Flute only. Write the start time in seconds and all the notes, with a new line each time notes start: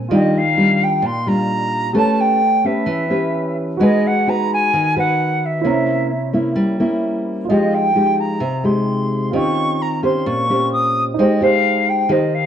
0.15 D#5
0.37 F5
0.83 G5
1.06 C6
1.28 A#5
1.96 A5
2.20 G5
2.65 E5
3.83 D#5
4.07 F#5
4.29 A#5
4.53 G#5
4.99 F#5
5.45 E5
7.51 D#5
7.74 G5
8.20 A#5
8.65 C6
9.34 C#6
9.82 A#5
10.04 C6
10.26 C#6
10.72 D#6
11.19 D#5
11.43 F5
11.89 G5
12.11 D#5
12.34 F5